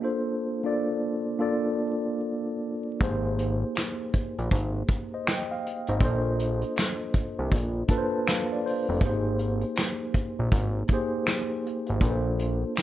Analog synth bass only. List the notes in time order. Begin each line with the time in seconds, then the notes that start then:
3.01 G#1
4.39 A#1
4.52 G#1
5.89 G#1
6.01 A#1
7.39 C2
7.52 A#1
8.89 F1
9.01 G#1
10.39 A#1
10.52 G#1
11.89 G#1
12.01 A#1